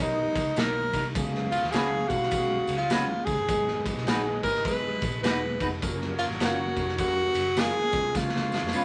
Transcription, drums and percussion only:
0.35 kick loud
0.35 ride medium
0.35 tambourine medium
0.56 snare loud
0.56 ride medium
0.56 tambourine loud
0.93 kick medium
0.93 open hi-hat medium
0.93 ride medium
0.93 tambourine medium
1.15 kick loud
1.15 hi-hat pedal medium
1.15 ride medium
1.15 tambourine medium
1.35 snare soft
1.52 ride medium
1.52 tambourine medium
1.64 snare soft
1.73 snare loud
1.73 ride medium
1.73 tambourine medium
2.10 kick medium
2.10 ride medium
2.10 tambourine medium
2.23 snare soft
2.31 kick loud
2.31 ride medium
2.31 tambourine medium
2.67 ride medium
2.67 tambourine medium
2.90 snare loud
2.90 ride medium
2.90 tambourine loud
3.27 kick loud
3.27 ride medium
3.27 tambourine medium
3.49 kick loud
3.49 ride medium
3.49 tambourine medium
3.68 snare soft
3.86 kick medium
3.86 ride medium
3.86 tambourine medium
3.97 snare soft
4.07 snare loud
4.07 ride medium
4.07 tambourine medium
4.43 kick medium
4.43 ride medium
4.43 tambourine medium
4.55 snare soft
4.65 kick loud
4.65 ride medium
4.65 tambourine medium
5.02 kick loud
5.02 ride medium
5.02 tambourine medium
5.24 snare loud
5.24 ride medium
5.24 tambourine loud
5.60 kick loud
5.60 open hi-hat soft
5.60 ride medium
5.60 tambourine medium
5.82 kick loud
5.82 hi-hat pedal medium
5.82 ride medium
5.82 tambourine loud
6.01 snare soft
6.19 ride medium
6.19 tambourine medium
6.31 snare soft
6.40 snare loud
6.40 ride medium
6.40 tambourine medium
6.77 kick medium
6.77 ride medium
6.77 tambourine medium
6.89 snare soft
6.98 kick loud
6.98 ride medium
6.98 tambourine medium
7.34 ride medium
7.34 tambourine medium
7.57 snare loud
7.57 ride medium
7.57 tambourine loud
7.92 kick loud
7.92 ride medium
7.92 tambourine medium
8.15 kick loud
8.15 snare medium
8.15 tambourine medium
8.29 snare medium
8.36 snare medium
8.52 snare medium
8.52 tambourine medium
8.55 snare medium
8.67 snare medium
8.73 tambourine medium

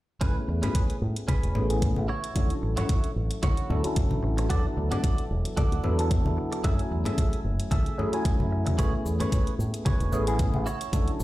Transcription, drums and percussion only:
0.21 kick loud
0.21 closed hi-hat medium
0.63 closed hi-hat soft
0.63 low conga medium
0.75 kick loud
0.75 closed hi-hat medium
0.90 closed hi-hat soft
1.16 closed hi-hat soft
1.28 kick loud
1.28 closed hi-hat medium
1.28 high conga medium
1.43 closed hi-hat soft
1.55 low conga medium
1.70 closed hi-hat medium
1.82 kick loud
1.82 closed hi-hat medium
1.96 high conga medium
2.24 closed hi-hat soft
2.36 kick loud
2.36 closed hi-hat medium
2.50 closed hi-hat soft
2.77 closed hi-hat soft
2.77 low conga medium
2.89 kick loud
2.89 closed hi-hat medium
3.04 closed hi-hat soft
3.31 closed hi-hat soft
3.43 kick loud
3.43 closed hi-hat medium
3.43 high conga medium
3.57 closed hi-hat soft
3.70 low conga medium
3.84 closed hi-hat soft
3.96 kick loud
3.96 closed hi-hat medium
4.11 high conga medium
4.38 closed hi-hat soft
4.50 kick loud
4.50 closed hi-hat medium
4.92 closed hi-hat soft
4.92 low conga medium
5.04 kick loud
5.04 closed hi-hat medium
5.18 closed hi-hat soft
5.45 closed hi-hat soft
5.57 kick loud
5.57 closed hi-hat medium
5.57 high conga loud
5.72 closed hi-hat soft
5.84 low conga medium
5.99 closed hi-hat soft
6.11 kick loud
6.11 closed hi-hat medium
6.26 high conga medium
6.52 closed hi-hat soft
6.64 kick loud
6.64 closed hi-hat medium
6.79 closed hi-hat soft
7.05 closed hi-hat soft
7.05 low conga medium
7.18 kick loud
7.18 closed hi-hat medium
7.33 closed hi-hat soft
7.60 closed hi-hat soft
7.71 kick loud
7.71 closed hi-hat medium
7.71 high conga medium
7.86 closed hi-hat soft
7.99 low conga medium
8.13 closed hi-hat soft
8.25 kick loud
8.25 closed hi-hat medium
8.40 high conga medium
8.67 closed hi-hat soft
8.67 high conga medium
8.79 kick loud
8.79 closed hi-hat medium
8.79 cabasa soft
9.06 cabasa medium
9.20 closed hi-hat soft
9.20 low conga medium
9.20 cabasa soft
9.32 kick loud
9.32 closed hi-hat medium
9.32 cabasa soft
9.47 closed hi-hat soft
9.60 cabasa medium
9.74 closed hi-hat soft
9.74 cabasa soft
9.86 kick loud
9.86 closed hi-hat medium
9.86 high conga medium
9.86 cabasa soft
10.00 closed hi-hat soft
10.00 cabasa soft
10.12 low conga medium
10.12 cabasa medium
10.27 closed hi-hat soft
10.27 cabasa soft
10.39 kick loud
10.39 closed hi-hat medium
10.39 cabasa soft
10.54 high conga medium
10.66 cabasa medium
10.81 closed hi-hat soft
10.81 cabasa soft
10.93 kick loud
10.93 closed hi-hat medium
10.93 cabasa soft
11.08 closed hi-hat soft
11.20 cabasa medium

